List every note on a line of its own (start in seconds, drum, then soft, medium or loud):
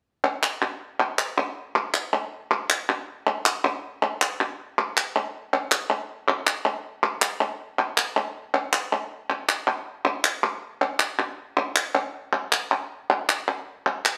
0.43 clap medium
0.62 clap soft
1.00 clap soft
1.18 clap medium
1.38 clap soft
1.75 clap soft
1.94 clap medium
2.51 clap soft
2.70 clap medium
2.89 clap soft
3.27 clap soft
3.45 clap medium
4.02 clap soft
4.21 clap medium
4.40 clap soft
4.78 clap soft
4.97 clap medium
5.16 clap soft
5.53 clap soft
5.71 clap medium
5.90 clap soft
6.28 clap soft
6.47 clap medium
6.65 clap soft
7.03 clap soft
7.22 clap medium
7.79 clap soft
7.97 clap medium
8.16 clap soft
8.54 clap soft
8.73 clap medium
8.93 clap soft
9.30 clap soft
9.49 clap medium
9.67 clap soft
10.05 clap soft
10.24 clap medium
10.43 clap soft
10.81 clap soft
10.99 clap medium
11.19 clap soft
11.57 clap soft
11.76 clap medium
11.95 clap soft
12.33 clap soft
12.52 clap medium
12.71 clap soft
13.10 clap soft
13.29 clap medium
13.48 clap soft
13.86 clap soft
14.05 clap medium